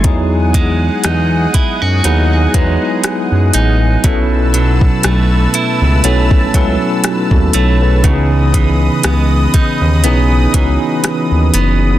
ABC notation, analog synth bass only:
X:1
M:4/4
L:1/16
Q:"Swing 16ths" 1/4=60
K:E
V:1 name="Analog synth bass" clef=bass
E,,4 E,,2 z F,, D,,2 E,, z2 F,, A,,,2 | B,,,4 B,,,2 z C,, B,,,2 C,, z2 D,, B,,,2 | C,,4 C,,2 z D,, B,,,2 C,, z2 D,, F,,,2 |]